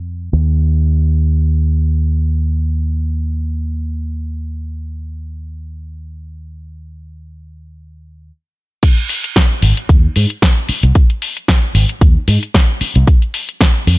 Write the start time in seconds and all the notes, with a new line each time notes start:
Already playing: F2
0.33 D#2
8.83 kick, closed hi-hat, crash
8.97 closed hi-hat
9.09 open hi-hat
9.24 closed hi-hat
9.36 kick, snare, closed hi-hat
9.62 G#1, open hi-hat
9.77 closed hi-hat
9.89 D#2, kick, closed hi-hat
10.16 G#2, open hi-hat
10.30 closed hi-hat
10.42 kick, snare, open hi-hat
10.69 muted fingered electric bass stroke, open hi-hat
10.83 C2, closed hi-hat
10.95 kick, closed hi-hat
11.10 closed hi-hat
11.22 open hi-hat
11.37 closed hi-hat
11.48 kick, snare, closed hi-hat
11.75 G#1, open hi-hat
11.89 closed hi-hat
12.01 D#2, kick, closed hi-hat
12.16 muted fingered electric bass stroke
12.28 G#2, open hi-hat
12.43 closed hi-hat
12.54 kick, snare, closed hi-hat
12.81 muted fingered electric bass stroke, open hi-hat
12.95 C2, closed hi-hat
13.07 kick, closed hi-hat
13.22 closed hi-hat
13.34 open hi-hat
13.49 closed hi-hat
13.61 kick, snare, closed hi-hat
13.87 F2, open hi-hat